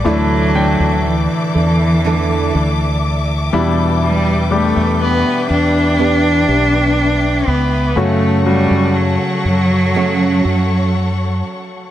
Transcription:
<<
  \new Staff \with { instrumentName = "String section" } { \time 4/4 \key e \dorian \tempo 4 = 61 << { d'''1~ | d'''1 | cis'''1 | } \\ { <a' d'' e''>2.~ <a' d'' e''>8 <b' g''>8~ | <b' g''>1 | <a' cis'' fis''>1 | } >> }
  \new Staff \with { instrumentName = "Grand piano" } { \time 4/4 \key e \dorian <a d' e'>8 <a d' g''>2 r4 <g d' e'>8~ | <g d' e'>8 <g d' g'>2 r4. | <a cis' fis'>8 <a cis' fis'>2 r4. | }
  \new Staff \with { instrumentName = "Grand piano" } { \clef bass \time 4/4 \key e \dorian a,4. r2 b,8~ | b,4 r2. | cis4. r2 r8 | }
  \new Staff \with { instrumentName = "Nylon-string guitar" } { \time 4/4 \key e \dorian <d e a d' a'>4. <a d' a'>8 <d e a d' a'>8 <a d' a'>4 <e b d' g'>8~ | <e b d' g'>2 <e b d' g'>8 <b d' g'>4. | <cis a cis' fis'>2 <fis, cis fis a cis' fis'>8 <fis a cis' fis'>4. | }
  \new Staff \with { instrumentName = "Cello" } { \clef bass \time 4/4 \key e \dorian fis4 e2~ e8 r8 | g8 a8 b8 d'2 b8 | a8 g8 fis2~ fis8 r8 | }
  \new Staff \with { instrumentName = "Fretless electric bass" } { \clef bass \time 4/4 \key e \dorian d,8. d,8 r16 e,4 d,4 e,8~ | e,8. e,8 r16 e,4 b,,4 cis,8 | fis,8. fis,8 r16 fis,4 fis,4 r8 | }
>>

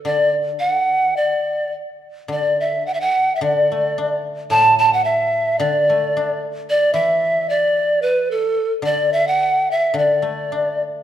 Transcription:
<<
  \new Staff \with { instrumentName = "Pan flute" } { \time 4/4 \tempo 4 = 109 d''8 r8 fis''4 d''4 r4 | d''8 e''8 fis''32 e''32 fis''8~ fis''32 e''32 d''4. r8 | a''8 a''16 fis''16 e''4 d''4. r8 | d''8 e''4 d''4 b'8 a'8. r16 |
d''8 e''16 fis''8. e''8 d''4. r8 | }
  \new Staff \with { instrumentName = "Guzheng" } { \clef bass \time 4/4 d2. r4 | d2 d8 a8 d'4 | a,2 d8 a8 d'4~ | d'8 e2. r8 |
d2 d8 a8 d'4 | }
>>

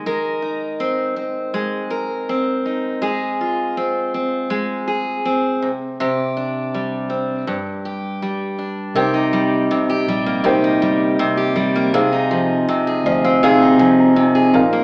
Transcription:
<<
  \new Staff \with { instrumentName = "Felt piano" } { \time 4/4 \key c \minor \tempo 4 = 81 << { r1 | r1 | r1 | r1 |
r4. ees''16 f''16 f''16 g''16 aes''16 bes''16 aes''16 aes''16 bes''8 | } \\ { r1 | r1 | r1 | <ees' bes' c'' g''>2 <ees' bes' c'' g''>2 |
<ees' aes' c'' f''>2 <ees' aes' c''>4. <ees' f' bes' f''>8 | } >> }
  \new Staff \with { instrumentName = "Steel-string acoustic guitar" } { \time 4/4 \key c \minor <aes bes'>8 ees'8 c'8 c'8 aes8 bes'8 c'8 ees'8 | <aes aes'>8 f'8 c'8 c'8 aes8 aes'8 c'8 c8 | <c g'>8 d'8 g8 c'8 g,8 g'8 g8 d'8 | <c g'>16 ees'16 g8 c16 g'16 g16 bes16 <c g'>16 ees'16 g8 c16 g'16 g16 bes16 |
<c aes'>16 ees'16 f8 c16 aes'16 f16 c'16 <c aes'>16 ees'16 f8 c16 aes'16 bes,16 bes16 | }
  \new Staff \with { instrumentName = "Fingered electric bass" } { \clef bass \time 4/4 \key c \minor r1 | r1 | r1 | c,4~ c,16 r16 bes,,4 g,,4 g,,8 |
c,4~ c,16 r16 d,4 c,4 bes,,8 | }
>>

